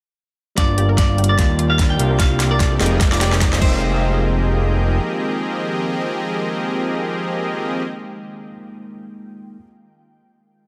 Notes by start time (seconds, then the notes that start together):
0.55 G1 G3 A#3 D4 F4 G4 A#4 D5 F5 G5, kick, snare, closed hi-hat, riser
0.69 F4
0.78 G4, closed hi-hat
0.89 A#4
0.98 D4 D5, kick, snare, closed hi-hat
1.09 F4
1.18 G4, closed hi-hat
1.24 closed hi-hat
1.29 A#4 D5
1.36 D#2 D#3 G3 A#3 D4 D#4 G4 D5 F5, kick, snare, closed hi-hat
1.40 F4
1.50 D#4
1.59 F4, closed hi-hat
1.70 G4 F5
1.79 D4, kick, snare, closed hi-hat
1.90 D#4 G5
1.97 C2 G3 A#3 C4 D4 F4 G4 A#4 D5 F5, closed hi-hat
2.01 F4
2.10 A#4
2.19 D4 F5, kick, snare, closed hi-hat
2.31 F4
2.40 G4, snare, closed hi-hat
2.51 A#4 D5
2.60 D4, kick, snare, closed hi-hat
2.71 F4
2.78 F1 F3 G#3 A#3 C4 D#4 G4 G#4 A#4 D#5, snare, closed hi-hat
2.83 G5, closed hi-hat
2.92 G#4
3.01 D#4, kick, snare, closed hi-hat
3.12 F4 D5, snare
3.21 G4, snare, closed hi-hat
3.32 G#4, snare
3.41 D#4, kick, snare, closed hi-hat
3.52 F4, snare
3.59 F1 D#3 F3 G#3 A#3 C4 D#4 F4 G4 G#4 A#4 C5 D#5 G5, kick, crash
3.63 D#4 G5